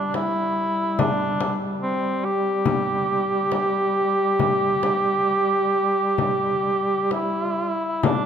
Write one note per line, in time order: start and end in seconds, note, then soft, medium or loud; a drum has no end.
0.00 7.86 G3 soft
0.00 0.15 D4 medium
0.14 1.01 E4 medium
0.14 frame drum soft
0.99 1.57 D4 medium
0.99 frame drum medium
1.41 frame drum soft
1.82 2.26 C4 medium
2.24 7.11 G4 medium
2.65 frame drum medium
3.52 frame drum soft
4.39 frame drum medium
4.83 frame drum medium
6.18 frame drum medium
7.11 8.06 E4 medium
7.11 frame drum soft
8.03 8.26 G3 soft
8.03 8.26 D4 medium
8.03 frame drum medium